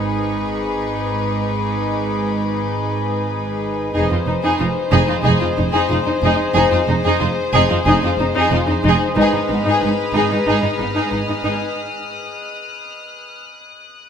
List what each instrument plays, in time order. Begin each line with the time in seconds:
Already playing: double bass section G#1, cello section G#2, viola section D#4, synth texture G#4 B4 D#5, violin section G#4 B4 B5 C#6
0.06 violin section D6
3.94 double bass section F1, cello section F2, viola section D#4, violin section G#4 C5, synth texture G#4 C5 D#5
4.10 cello section F2, viola section D#4, violin section F4
4.26 double bass section F1, cello section F2, viola section D#4, violin section D#4
4.42 cello section F2, viola section D#4, violin section G#4
4.59 double bass section F1, cello section F2, viola section D#4, violin section F4
4.91 double bass section F1, cello section F2, viola section D#4, violin section G#4
5.07 cello section F2, viola section D#4, violin section F4
5.23 double bass section F1, cello section F2, viola section D#4, violin section G#4
5.40 cello section F2, viola section D#4, violin section F4
5.57 double bass section F1, cello section F2, viola section D#4, violin section D#4
5.72 cello section F2, viola section D#4, violin section G#4
5.89 double bass section F1, cello section F2, viola section D#4, violin section F4
6.05 cello section F2, violin section D#4, viola section D#4
6.22 double bass section F1, cello section F2, viola section D#4, violin section G#4
6.53 double bass section F1, cello section F2, viola section D#4, violin section G#4
6.71 cello section F2, viola section D#4, violin section F4
6.87 double bass section F1, cello section F2, violin section D#4, viola section D#4
7.04 cello section F2, viola section D#4, violin section G#4
7.20 double bass section F1, cello section F2, viola section D#4, violin section F4
7.54 double bass section F1, cello section F2, viola section D#4, violin section G#4
7.70 cello section F2, viola section D#4, violin section F4
7.85 double bass section F1, cello section F2, viola section D#4, violin section G#4
8.02 cello section F2, viola section D#4, violin section F4
8.18 double bass section F1, cello section F2, viola section D#4, violin section D#4
8.34 cello section F2, viola section D#4
8.39 violin section G#4
8.51 double bass section F1, cello section F2, viola section D#4, violin section F4
8.66 cello section F2, viola section D#4
8.71 violin section D#4
8.83 double bass section F1, cello section F2, viola section D#4
8.89 violin section G#4
9.16 double bass section G#1, cello section G#2, viola section D#4, synth texture G#4 B4 D#5, violin section B4 D#6 F6
9.21 violin section G#4
9.31 cello section G#2, viola section D#4
9.36 violin section D#4
9.48 double bass section G#1, cello section G#2, viola section D#4
9.53 violin section B3
9.64 cello section G#2, viola section D#4
9.68 violin section G#4
9.81 double bass section G#1, cello section G#2, viola section D#4
9.86 violin section D#4
10.13 double bass section G#1, cello section G#2, viola section D#4, violin section G#4
10.29 cello section G#2, viola section D#4, violin section D#4
10.45 double bass section G#1, cello section G#2, viola section D#4, violin section G#4 F#6
10.62 cello section G#2, viola section D#4, violin section D#4
10.78 double bass section G#1, cello section G#2, violin section B3, viola section D#4
10.95 cello section G#2, viola section D#4, violin section G#4
11.10 double bass section G#1, cello section G#2, viola section D#4, violin section D#4
11.28 cello section G#2, violin section B3, viola section D#4
11.43 double bass section G#1, cello section G#2, viola section D#4, violin section G#4